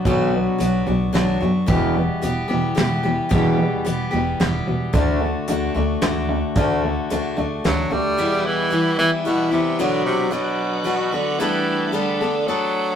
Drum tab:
HH |x-x-x-|x-x-x-|x-x-x-|x-x-x-|
SD |----o-|----o-|----o-|----o-|
BD |o-----|o-----|o-----|o-----|

HH |x-x-x-|------|------|------|
SD |----o-|------|------|------|
BD |o-----|------|------|------|